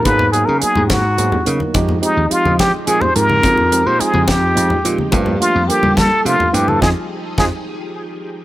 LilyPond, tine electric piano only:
\new Staff \with { instrumentName = "Tine electric piano" } { \time 6/8 \key f \dorian \tempo 4. = 71 <ges bes ces' ees' aes'>8 <ges bes ces' ees' aes'>8 <ges bes ces' ees' aes'>8. r16 <ges bes ces' ees' aes'>8 <ges bes ces' ees' bes'>8 | <f aes c' ees' g'>8 <f aes c' ees' g'>8 <f aes c' ees' g'>8. r16 <f aes c' ees' aes'>8 <f aes c' ees' g'>8~ | <f aes c' ees' g'>16 r16 <f aes c' ees' g'>8 <f aes c' ees' f'>8. r16 <f aes c' ees' f'>8 <f aes c' ees' g'>8 | <f a bes d' g'>8 <f a bes d' g'>8 <f bes d' a' bes'>8. r16 <f a bes d' a'>8 <f a bes d' e'>8 |
<c' ees' f'>8 r8 <c' ees' f'>8 r4. | }